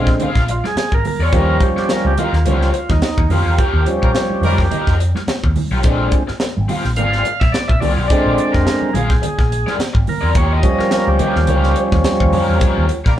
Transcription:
Already playing: A#1 D3 G#3 C4
0.07 muted overdriven electric guitar stroke, kick, snare
0.20 C4 F4 G#4 F5, muted picked electric bass stroke, closed hi-hat, muted conga, low conga
0.35 A#1, kick, snare
0.48 F4, muted overdriven electric guitar stroke, closed hi-hat, muted conga
0.64 G#4, muted overdriven electric guitar stroke, snare, high conga
0.76 G#4, muted picked electric bass stroke, muted overdriven electric guitar stroke, snare, closed hi-hat
0.92 G#1 A#4, muted overdriven electric guitar stroke, kick
1.05 A#4, open hi-hat, muted conga, high conga, low conga
1.19 E2 C4 F4 G#4 C#5 D5
1.32 D#2 F3 G3 A#3 C#4 F4 G4 A#4 C#5, kick, closed hi-hat, muted conga
1.60 G4, kick, closed hi-hat, muted conga
1.76 G4, muted picked electric bass stroke, muted overdriven electric guitar stroke, snare
1.89 A#4, muted overdriven electric guitar stroke, snare, closed hi-hat, muted conga
2.05 C#2 G4, high conga
2.18 A#3 F4 G4 D#5, closed hi-hat, high conga, low conga
2.33 D#2, muted overdriven electric guitar stroke, snare
2.45 C#2 F3 G3 A3 C#4 E4 F#4 C5, closed hi-hat, muted conga, low conga
2.56 A#3 F4 G4 C#5
2.62 snare
2.73 muted overdriven electric guitar stroke, closed hi-hat, muted conga
2.89 D#2 D#4, muted overdriven electric guitar stroke, kick, snare, high conga
3.02 muted overdriven electric guitar stroke, snare, closed hi-hat, muted conga
3.18 D#2, muted overdriven electric guitar stroke, kick
3.29 F2 A#3 F4 G4 C#5, open hi-hat, high conga, low conga
3.45 E2 A#3 F4 G4 C#5
3.57 A#3 F4 G4 C#5, kick, closed hi-hat, muted conga
3.73 D#2
3.86 F3 G3 C#4, closed hi-hat
4.02 A#1 G3 A#3 F4 A#4, muted overdriven electric guitar stroke, kick
4.15 muted overdriven electric guitar stroke, snare, closed hi-hat, muted conga
4.30 high conga
4.42 F2 G3 A#3 F4 G4 A#4 D#5, open hi-hat, muted conga, high conga, low conga
4.58 muted overdriven electric guitar stroke, kick, snare
4.70 A#3 F4 G4 D#5, muted picked electric bass stroke, closed hi-hat, muted conga, low conga
4.87 F2, kick, snare
4.99 muted overdriven electric guitar stroke, closed hi-hat
5.15 muted overdriven electric guitar stroke, snare, high conga
5.27 muted picked electric bass stroke, muted overdriven electric guitar stroke, snare, closed hi-hat, muted conga
5.43 D#2, muted overdriven electric guitar stroke, kick
5.56 open hi-hat, muted conga, high conga, low conga
5.71 B1 A#3 F4 G4 C#5
5.83 A#1 D3 G#3 C4 F4 G#4 D5, kick, closed hi-hat, muted conga
6.12 kick, closed hi-hat, muted conga
6.27 muted overdriven electric guitar stroke, muted picked electric bass stroke, snare
6.40 muted overdriven electric guitar stroke, snare, closed hi-hat, muted conga
6.57 G#1, high conga
6.68 C4 F4 G#4 F5, open hi-hat, high conga, low conga
6.85 A#1, muted overdriven electric guitar stroke, snare
6.96 G#1 C4 F4 G#4 D5 F5, closed hi-hat, muted conga, low conga
7.13 snare
7.25 muted overdriven electric guitar stroke, closed hi-hat, muted conga
7.40 A#1 E5, muted overdriven electric guitar stroke, kick, snare, high conga
7.52 D5, muted overdriven electric guitar stroke, snare, closed hi-hat, muted conga
7.68 A#1 E5, muted overdriven electric guitar stroke, kick
7.80 C2 C4 F4 G#4 D5, open hi-hat, high conga, low conga
7.97 B1 C4 F4 G#4 D5
8.08 D3 G#3 C4 F4 G#4 D5, kick, closed hi-hat, muted conga
8.26 A#1
8.38 closed hi-hat, muted conga
8.52 F1 A#4, muted overdriven electric guitar stroke, kick, snare
8.66 muted overdriven electric guitar stroke, snare, closed hi-hat, muted conga
8.82 high conga
8.93 A#1 C4 F4 G#4 F5, closed hi-hat, muted conga, high conga, low conga
9.10 muted overdriven electric guitar stroke, kick, snare
9.22 muted overdriven electric guitar stroke, muted picked electric bass stroke, closed hi-hat, muted conga, low conga
9.38 A#1, muted overdriven electric guitar stroke, kick, snare
9.52 closed hi-hat, muted conga
9.66 C4 F4 G#4 D5, snare, high conga
9.77 muted overdriven electric guitar stroke, muted picked electric bass stroke, snare, closed hi-hat, muted conga
9.93 G#1, muted overdriven electric guitar stroke, kick
10.07 A#4, open hi-hat, muted conga, high conga, low conga
10.21 E2 C4 F4 G#4 D5
10.34 D#2 A#3 F4 G4 C#5, kick, closed hi-hat, muted conga
10.52 D#5
10.63 F3 G3 C#4, kick, closed hi-hat, muted conga
10.79 A#4, muted overdriven electric guitar stroke, muted picked electric bass stroke, snare
10.91 A#4, muted overdriven electric guitar stroke, snare, closed hi-hat
11.08 C#2 G4, high conga
11.19 A#3 F4 G4 D#5, closed hi-hat, high conga, low conga
11.36 D#2, muted overdriven electric guitar stroke, snare
11.47 C#2 A#3 F4 G4 C#5, closed hi-hat, muted conga, low conga
11.64 snare
11.76 muted overdriven electric guitar stroke, closed hi-hat, muted conga
11.92 D#2, muted overdriven electric guitar stroke, kick, snare, high conga
12.04 muted overdriven electric guitar stroke, snare, closed hi-hat
12.20 D#2, muted overdriven electric guitar stroke, kick
12.33 F2 A#3 F4 G4 C#5, open hi-hat, muted conga, high conga, low conga
12.47 E2 A#3 F4 G4 C#5
12.60 A#3 F4 G4 C#5, kick, closed hi-hat, muted conga
12.78 D#2
12.89 closed hi-hat, muted conga
13.04 A#1 G3 A#3 F4 A#4, muted overdriven electric guitar stroke, kick, snare

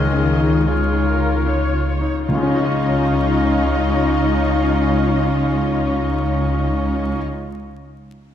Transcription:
Already playing: C#2 C#3 D#3 D#4 F4 G#4 C#5 D#5 F6
0.13 C#4
0.27 D#4
0.40 D#4
0.47 F4
0.66 C#3 D#4 F4 G#4 C#5 F6
0.86 D#5
0.92 D#4
1.06 A#4 F5
1.18 F4
1.26 C#5
1.46 D#4 F4 C#5
1.68 C#4
1.73 F4
1.87 G#3 C#5
2.01 D#4
2.09 C#4
2.27 C#2 C#3 C#4 D#4 F4 C#5 D#5 F5 C#6
2.35 C#3 C#4
2.42 C#4 D#4
2.49 D#4 F4
2.56 F4 D#5
2.64 D#5

